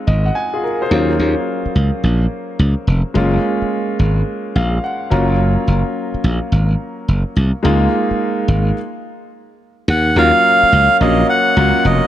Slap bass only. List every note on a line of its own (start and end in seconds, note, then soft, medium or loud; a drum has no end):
0.07 0.29 G#1 medium
0.91 1.13 D#2 medium
1.19 1.34 D#2 medium
1.66 muted slap bass stroke soft
1.75 1.90 C#2 medium
2.04 2.25 A#1 medium
2.59 2.74 C#2 medium
2.87 3.02 F1 medium
3.15 3.37 F#1 loud
3.62 muted slap bass stroke soft
3.99 4.21 G#1 medium
4.56 4.78 A#1 medium
5.11 5.56 F#1 loud
5.68 5.82 F#1 medium
6.14 muted slap bass stroke soft
6.24 6.38 A#1 medium
6.52 6.74 G#1 loud
7.08 7.23 F#1 medium
7.36 7.51 C2 medium
7.65 7.86 C#2 loud
8.11 muted slap bass stroke soft
8.48 8.70 G#1 medium
9.88 10.10 D#2 loud
10.16 10.30 D#2 medium
10.63 muted slap bass stroke soft
10.72 10.87 C#2 medium
11.01 11.23 A#1 medium
11.57 11.71 C#2 medium
11.85 11.99 F1 loud